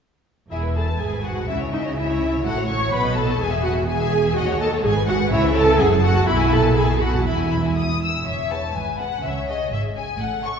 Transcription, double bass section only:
0.51 E1
1.00 G#1
1.48 C#2
2.46 A1
2.94 B1
3.40 E1
4.37 D#2
4.84 G#1
5.33 C#2
5.80 F#1
6.28 B1
7.26 E1
8.25 E1
8.74 G#1
9.24 C#2
9.72 G#1
10.20 A1

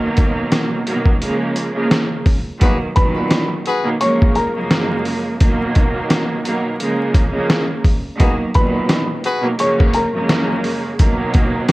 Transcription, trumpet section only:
2.62 F#4 G#4 B4
3.67 F#4 G#4 B4
8.19 F#4 G#4 B4
9.25 F#4 G#4 B4

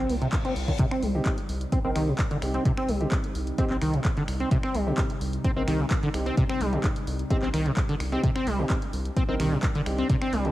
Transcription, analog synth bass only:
0.09 C2
0.56 C2
1.03 C2
1.49 C2
1.84 A#1
1.96 C2
2.42 C2
2.89 C2
3.35 C2
3.70 A#1
3.82 C2
4.28 C2
4.75 C2
5.21 C2
5.57 A#1
5.68 C2
6.14 C2
6.61 C2
7.07 C2
7.43 A#1
7.54 C2
8.00 C2
8.47 C2
8.93 C2
9.29 A#1
9.40 C2
9.86 C2
10.33 C2

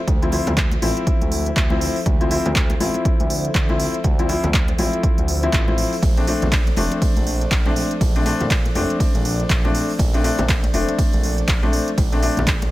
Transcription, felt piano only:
0.22 F3 C4 E4
0.32 F3 C4 E4
0.82 F3 C4 E4
1.71 F3 C4 E4
2.20 F3 C4 E4
2.31 F3 C4 E4
2.80 F3 C4 E4
3.69 F3 C4 E4
4.19 F3 C4 E4
4.29 F3 C4 E4
4.78 F3 C4 E4
5.43 F3 C4 E4
5.68 F3 C4 E4
6.17 A3 C4 D4
6.27 A3 C4 D4
6.77 A3 C4 D4
7.66 A3 C4 D4
8.15 A3 C4 D4
8.26 A3 C4 D4
8.75 A3 C4 D4
9.64 A3 C4 D4
10.14 A3 C4 D4
10.24 A3 C4 D4
10.73 A3 C4 D4
11.63 A3 C4 D4
12.12 A3 C4 D4
12.22 A3 C4 D4

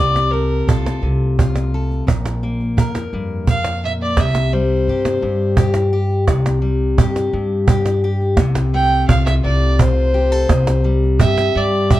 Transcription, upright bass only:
Already playing: C2
0.67 C2
1.02 C2
2.07 A#1
2.77 F2
3.13 F2
4.18 C2
4.88 G2
5.23 G2
6.28 C2
6.98 G2
7.33 G2
8.39 C2
9.09 C2
9.45 C2
10.50 C2
11.20 G2
11.55 G2

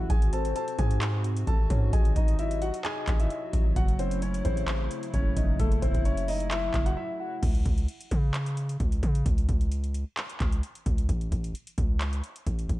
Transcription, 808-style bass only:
0.10 G#1
0.79 G#2
1.47 G#1
1.70 G#2
1.93 G#1
2.16 G#1
3.08 G#1
3.53 G#1
3.76 F#1
4.45 A1
5.14 F#1
5.37 F#1
5.59 F#1
5.82 F#1
5.95 F#1
6.74 F#1
7.43 C#2
7.66 C#2
8.11 C#3
8.80 C#2
9.03 C#3
9.26 C#2
9.49 C#2
10.40 C#2
10.86 C#2
11.09 A1
11.32 A1
11.78 C#2
12.47 A1
12.69 A1

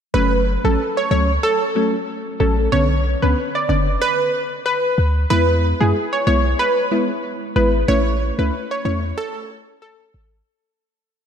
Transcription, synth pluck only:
0.14 B4
0.65 A4
0.97 C#5
1.11 C#5
1.43 A4
2.40 A4
2.72 C#5
3.22 B4
3.55 D5
3.69 D5
4.02 B4
4.66 B4
5.30 B4
5.80 G#4
6.13 C#5
6.27 C#5
6.59 B4
7.56 B4
7.88 C#5
8.39 B4
8.71 C#5
8.85 C#5
9.18 A4
9.82 A4

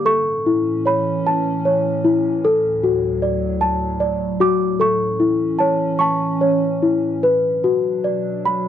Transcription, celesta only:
0.05 A4 C#6
0.46 E4
0.86 C#5 B5
1.27 A5
1.65 C#5
2.04 E4
2.45 A4
2.83 F#4
3.22 D5
3.61 A5
4.00 D5
4.40 F#4 D6
4.80 A4 C#6
5.20 E4
5.59 C#5 A5
5.99 A5 C#6
6.41 C#5
6.83 E4
7.23 B4
7.64 F#4
8.04 D5
8.46 B5

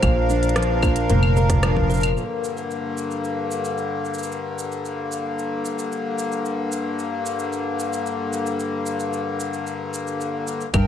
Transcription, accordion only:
Already playing: D4 A#4 F5
2.16 G2 D3 A#3
10.73 D4 A#4 G5

